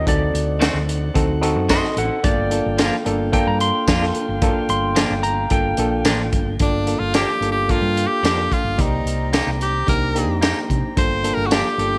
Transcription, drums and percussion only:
0.07 kick, closed hi-hat
0.35 closed hi-hat
0.62 snare, closed hi-hat, tambourine
0.89 closed hi-hat
1.15 kick, closed hi-hat
1.43 closed hi-hat
1.69 kick, snare, closed hi-hat, tambourine
1.84 snare
1.97 closed hi-hat
2.24 kick, closed hi-hat
2.51 closed hi-hat
2.78 snare, closed hi-hat, tambourine
3.06 closed hi-hat
3.33 kick, closed hi-hat
3.60 closed hi-hat
3.88 kick, snare, closed hi-hat, tambourine
4.03 snare
4.15 closed hi-hat
4.42 kick, closed hi-hat
4.69 closed hi-hat
4.96 snare, closed hi-hat, tambourine
5.23 closed hi-hat
5.50 kick, closed hi-hat
5.77 closed hi-hat
6.05 snare, closed hi-hat, tambourine
6.33 kick, closed hi-hat
6.59 kick, closed hi-hat
6.87 closed hi-hat
7.14 snare, closed hi-hat, tambourine
7.42 closed hi-hat
7.69 kick, closed hi-hat
7.97 closed hi-hat
8.25 snare, closed hi-hat, tambourine
8.52 kick, closed hi-hat
8.79 kick, closed hi-hat
9.07 closed hi-hat
9.33 snare, closed hi-hat, tambourine
9.61 closed hi-hat
9.88 kick, closed hi-hat
10.16 closed hi-hat
10.42 snare, closed hi-hat, tambourine
10.70 kick, closed hi-hat
10.97 kick, closed hi-hat
11.24 closed hi-hat
11.51 snare, closed hi-hat, tambourine
11.79 closed hi-hat

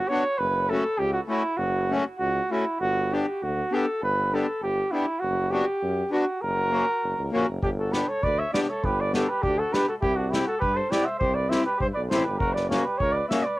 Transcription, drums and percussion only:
7.63 kick
7.93 snare
8.23 kick
8.54 snare
8.84 kick
9.14 snare
9.43 kick
9.74 snare
10.03 kick
10.33 snare
10.62 kick
10.92 snare
11.21 kick
11.52 snare
11.80 kick
12.11 snare
12.40 kick
12.56 snare
12.71 snare
13.00 kick
13.31 snare

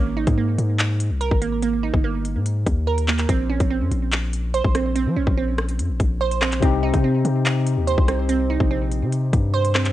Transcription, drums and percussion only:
0.27 kick, closed hi-hat
0.58 closed hi-hat
0.79 clap, closed hi-hat
1.00 closed hi-hat
1.21 closed hi-hat
1.31 kick
1.42 closed hi-hat
1.62 closed hi-hat
1.94 kick
2.25 closed hi-hat
2.46 closed hi-hat
2.67 kick, closed hi-hat
2.98 closed hi-hat
3.08 clap
3.19 clap, closed hi-hat
3.29 kick, closed hi-hat
3.60 kick, closed hi-hat
3.92 closed hi-hat
4.12 clap, closed hi-hat
4.33 closed hi-hat
4.54 closed hi-hat
4.65 kick
4.75 cross-stick, closed hi-hat
4.96 closed hi-hat
5.27 kick
5.58 cross-stick, closed hi-hat
5.69 closed hi-hat
5.79 closed hi-hat
6.00 kick, closed hi-hat
6.31 closed hi-hat
6.42 cross-stick, clap
6.52 clap, closed hi-hat
6.62 kick, closed hi-hat
6.94 kick, closed hi-hat
7.25 closed hi-hat
7.46 clap, closed hi-hat
7.67 closed hi-hat
7.88 closed hi-hat
7.98 kick
8.08 cross-stick, closed hi-hat
8.29 closed hi-hat
8.60 kick
8.92 closed hi-hat
9.12 closed hi-hat
9.33 kick, closed hi-hat
9.65 closed hi-hat
9.75 cross-stick, clap
9.85 clap, closed hi-hat

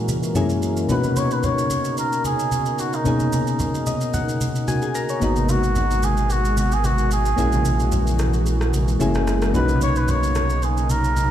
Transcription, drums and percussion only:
0.08 high conga, shaker
0.23 shaker
0.35 high conga, shaker
0.50 shaker
0.62 shaker
0.77 shaker
0.89 low conga, shaker
1.04 high conga, shaker
1.16 high conga, shaker
1.31 shaker
1.43 low conga, shaker
1.58 high conga, shaker
1.70 high conga, shaker
1.85 shaker
1.98 shaker
2.13 shaker
2.25 high conga, shaker
2.39 shaker
2.52 high conga, shaker
2.66 shaker
2.79 shaker
2.93 shaker
3.06 low conga, shaker
3.20 high conga, shaker
3.33 high conga, shaker
3.47 shaker
3.59 low conga, shaker
3.75 high conga, shaker
3.87 high conga, shaker
4.01 shaker
4.14 low conga, shaker
4.29 shaker
4.41 high conga, shaker
4.56 shaker
4.68 high conga, shaker
4.82 shaker
4.95 shaker
5.09 shaker
5.22 low conga, shaker
5.36 high conga, shaker
5.49 high conga, shaker
5.63 shaker
5.76 low conga, shaker
5.91 high conga, shaker
6.03 high conga, shaker
6.17 shaker
6.30 shaker
6.45 shaker
6.57 high conga, shaker
6.72 shaker
6.84 high conga, shaker
6.98 shaker
7.11 shaker
7.26 shaker
7.38 low conga, shaker
7.52 high conga, shaker
7.65 high conga, shaker
7.80 shaker
7.92 low conga, shaker
8.07 high conga, shaker
8.19 cross-stick, high conga, shaker
8.34 shaker
8.46 shaker
8.61 cross-stick, shaker
8.73 high conga, shaker
8.88 shaker
9.00 high conga, shaker
9.15 cross-stick, shaker
9.27 cross-stick, shaker
9.42 cross-stick, shaker
9.54 low conga, shaker
9.69 high conga, shaker
9.81 high conga, shaker
9.96 shaker
10.08 low conga, shaker
10.23 high conga, shaker
10.35 cross-stick, high conga, shaker
10.50 shaker
10.62 shaker
10.78 shaker
10.89 high conga, shaker
11.04 shaker
11.17 high conga, shaker

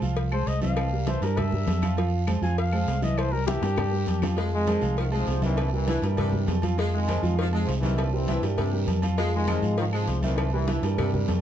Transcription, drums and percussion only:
0.02 high conga, low agogo, short guiro
0.17 cowbell, high conga, long guiro
0.32 high conga, low agogo, claves
0.47 cowbell, high conga, short guiro
0.62 high conga, low agogo, short guiro
0.77 cowbell, high conga, low agogo, long guiro, claves
0.92 high conga
1.06 cowbell, high conga, low agogo, short guiro
1.22 cowbell, high conga, low agogo, short guiro
1.37 cowbell, high conga, low conga, low agogo, long guiro, claves
1.52 high conga, low conga
1.67 cowbell, high conga, low timbale, low agogo, short guiro
1.82 cowbell, high conga, low agogo, short guiro, claves
1.97 cowbell, high conga, low agogo, long guiro
2.13 high conga
2.27 cowbell, high conga, low agogo, short guiro, claves
2.43 high conga, low agogo, short guiro
2.58 cowbell, high conga, long guiro
2.72 high conga, low agogo, claves
2.88 cowbell, high conga, low timbale, short guiro
3.03 high conga, low agogo, short guiro
3.17 cowbell, high conga, low agogo, long guiro, claves
3.33 high conga
3.47 cowbell, high bongo, high conga, low agogo, short guiro
3.62 cowbell, high bongo, high conga, low agogo, short guiro
3.76 cowbell, high bongo, high conga, low conga, low agogo, long guiro, claves
3.92 high conga
4.07 cowbell, high conga, low agogo, short guiro
4.22 cowbell, low bongo, high conga, low agogo, short guiro, claves
4.37 cowbell, low agogo, long guiro
4.52 high conga
4.67 cowbell, high conga, low agogo, short guiro
4.81 high conga, low agogo, short guiro
4.97 cowbell, high conga, long guiro
5.12 high conga, low agogo
5.27 cowbell, high conga, low timbale, short guiro
5.42 high conga, low agogo, short guiro
5.57 cowbell, high conga, low agogo, long guiro
5.72 high conga
5.87 cowbell, high conga, low agogo, short guiro
6.02 cowbell, high conga, low agogo, short guiro
6.17 cowbell, high conga, low conga, low agogo, long guiro
6.33 high conga, low conga
6.48 cowbell, high conga, low timbale, low agogo, short guiro
6.62 cowbell, high conga, low agogo, short guiro
6.78 cowbell, high conga, low agogo, long guiro
6.93 high conga
7.08 cowbell, high conga, low agogo, short guiro
7.23 high conga, low agogo, short guiro
7.39 cowbell, high conga, long guiro
7.53 high conga, low agogo
7.69 cowbell, short guiro
7.83 high conga, low agogo, short guiro
7.98 cowbell, low agogo, long guiro
8.14 high conga
8.28 cowbell, high conga, low agogo, short guiro
8.43 cowbell, high conga, low agogo, short guiro
8.58 cowbell, high conga, low conga, low agogo, long guiro
8.73 high conga
8.87 cowbell, high conga, low agogo, short guiro
9.02 cowbell, high conga, low agogo, short guiro
9.17 cowbell, high conga, low agogo, long guiro
9.33 high conga
9.47 cowbell, high conga, low agogo, short guiro, claves
9.62 high conga, low agogo, short guiro
9.77 cowbell, high conga, long guiro
9.93 high conga, low agogo, claves
10.08 cowbell, high conga, low timbale, short guiro
10.22 high conga, low agogo, short guiro
10.38 cowbell, high conga, low agogo, long guiro, claves
10.53 high conga
10.68 cowbell, high conga, low agogo, short guiro
10.83 cowbell, high conga, low agogo, short guiro
10.98 cowbell, high conga, low conga, low agogo, long guiro, claves
11.14 high conga, low conga
11.28 cowbell, high conga, low timbale, low agogo, short guiro

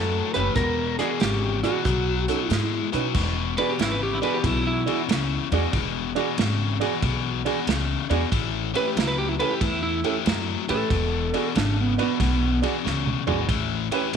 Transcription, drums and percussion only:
0.34 closed hi-hat
0.56 kick, closed hi-hat
0.99 closed hi-hat
1.20 snare, closed hi-hat
1.64 closed hi-hat
1.85 kick, closed hi-hat
2.28 closed hi-hat
2.50 snare, closed hi-hat
2.93 closed hi-hat
3.14 kick, crash
3.58 ride
3.79 snare, ride
4.23 ride
4.44 kick, ride
4.87 ride
5.09 snare, ride
5.52 ride
5.73 kick, ride
6.16 ride
6.38 snare, ride
6.81 ride
7.02 kick, ride
7.46 ride
7.67 snare, ride
8.11 ride
8.32 kick, ride
8.75 ride
8.97 snare, ride
9.40 ride
9.61 kick, ride
10.04 ride
10.26 snare, ride
10.69 ride
10.90 kick, ride
11.34 ride
11.55 snare, ride
11.99 ride
12.20 kick, snare, ride
12.63 ride
12.86 snare
13.06 mid tom
13.27 floor tom
13.49 kick, ride
13.92 ride
14.13 ride

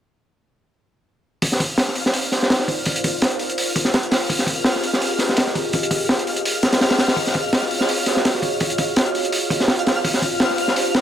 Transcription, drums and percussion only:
1.42 kick, open hi-hat
1.52 snare
1.60 kick, open hi-hat
1.78 snare, open hi-hat
1.88 snare
1.95 open hi-hat
2.06 snare
2.14 open hi-hat
2.32 snare, open hi-hat
2.43 snare
2.50 snare, open hi-hat
2.59 snare
2.68 kick, open hi-hat
2.86 kick, open hi-hat
2.96 closed hi-hat
3.04 kick, open hi-hat
3.22 snare, open hi-hat
3.31 closed hi-hat
3.39 open hi-hat
3.50 closed hi-hat
3.58 open hi-hat
3.76 kick, open hi-hat
3.85 snare
3.94 snare, open hi-hat
4.03 closed hi-hat
4.12 snare, open hi-hat
4.30 kick, open hi-hat
4.39 snare
4.47 kick, open hi-hat
4.64 snare, open hi-hat
4.76 snare
4.84 open hi-hat
4.93 snare
5.02 open hi-hat
5.19 snare, open hi-hat
5.29 snare
5.37 snare, open hi-hat
5.47 snare
5.55 kick, open hi-hat
5.73 kick, open hi-hat
5.83 closed hi-hat
5.91 kick, open hi-hat
6.09 snare, open hi-hat
6.19 closed hi-hat
6.27 open hi-hat
6.36 closed hi-hat
6.45 open hi-hat
6.63 snare, open hi-hat
6.73 snare, open hi-hat
6.81 snare, open hi-hat
6.90 snare, open hi-hat
6.98 snare, open hi-hat
7.08 snare, open hi-hat
7.16 kick, open hi-hat
7.27 snare
7.34 kick, open hi-hat
7.53 snare, open hi-hat
7.62 snare
7.71 open hi-hat
7.81 snare
7.89 open hi-hat
8.06 snare, open hi-hat
8.17 snare
8.25 snare, open hi-hat
8.35 snare
8.42 kick, open hi-hat
8.60 kick, open hi-hat
8.70 closed hi-hat
8.78 kick, open hi-hat
8.96 snare, open hi-hat
9.06 closed hi-hat
9.15 open hi-hat
9.25 closed hi-hat
9.32 open hi-hat
9.50 kick, open hi-hat
9.60 snare
9.68 snare, open hi-hat
9.79 closed hi-hat
9.87 snare, open hi-hat
10.05 kick, open hi-hat
10.14 snare
10.22 kick, open hi-hat
10.40 snare, open hi-hat
10.50 snare
10.58 open hi-hat
10.68 snare
10.76 open hi-hat
10.95 snare, open hi-hat

